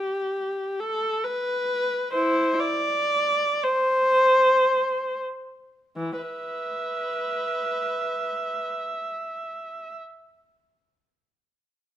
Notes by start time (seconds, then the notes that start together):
Already playing: G4
0.79 A4
1.24 B4
2.13 E4 C5
2.60 D5
3.63 C5
5.97 E3
6.21 B4 E5